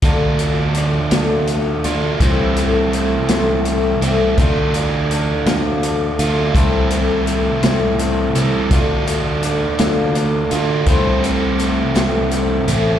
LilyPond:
<<
  \new Staff \with { instrumentName = "Twelve-string acoustic guitar" } { \time 6/8 \key d \minor \tempo 4. = 55 <d a d' f' a'>8 <d' f' a'>8 <a d' f' a'>8 <d a d' f' a'>8 <a d' f' a'>8 <d' f' a'>8 | <c e a c' e' a'>8 <a c' e' a'>8 <a c' e' a'>8 <c e a c' e' a'>8 <a c' e' a'>8 <a c' e' a'>8 | <d a d' f' a'>8 <d' f' a'>8 <a d' f' a'>8 <d a d' f' a'>8 <a d' f' a'>8 <d' f' a'>8 | <c e a c' e' a'>8 <a c' e' a'>8 <a c' e' a'>8 <c e a c' e' a'>8 <a c' e' a'>8 <a c' e' a'>8 |
<d a d' f' a'>8 <d' f' a'>8 <a d' f' a'>8 <d a d' f' a'>8 <a d' f' a'>8 <d' f' a'>8 | <c e a c' e' a'>8 <a c' e' a'>8 <a c' e' a'>8 <c e a c' e' a'>8 <a c' e' a'>8 <a c' e' a'>8 | }
  \new Staff \with { instrumentName = "Overdriven electric guitar" } { \time 6/8 \key d \minor <d a d' f'>2~ <d a d' f'>8 <d a d' f'>8 | <c e a c' e'>2~ <c e a c' e'>8 <c e a c' e'>8 | <d a d' f'>2~ <d a d' f'>8 <d a d' f'>8 | <c e a c' e'>2~ <c e a c' e'>8 <c e a c' e'>8 |
<d a d' f'>2~ <d a d' f'>8 <d a d' f'>8 | <c e a c' e'>2~ <c e a c' e'>8 <c e a c' e'>8 | }
  \new Staff \with { instrumentName = "Picked electric bass" } { \clef bass \time 6/8 \key d \minor d,4. d,4 d,8 | c,4. c,4 c,8 | d,4. d,4 d,8 | c,4. c,4 c,8 |
d,4. d,4 d,8 | c,4. c,4 a,,8 | }
  \new DrumStaff \with { instrumentName = "Drums" } \drummode { \time 6/8 <hh bd>8 hh8 hh8 <hh sn>8 hh8 hh8 | <hh bd>8 hh8 hh8 <hh sn>8 hh8 hh8 | <hh bd>8 hh8 hh8 <hh sn>8 hh8 hh8 | <hh bd>8 hh8 hh8 <hh sn>8 hh8 hh8 |
<hh bd>8 hh8 hh8 <hh sn>8 hh8 hh8 | <hh bd>8 hh8 hh8 <hh sn>8 hh8 hh8 | }
>>